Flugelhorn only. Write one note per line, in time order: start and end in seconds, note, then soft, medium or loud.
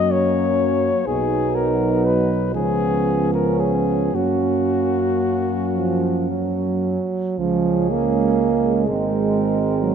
0.00 0.13 D#5 medium
0.11 1.08 C#5 medium
1.06 1.57 G#4 medium
1.55 2.07 A#4 medium
2.05 2.54 B4 medium
2.55 3.31 G#4 medium
3.34 3.61 A#4 medium
3.60 4.16 G#4 medium
4.15 6.84 F#4 medium
7.38 8.91 G#4 soft
8.89 9.95 A#4 soft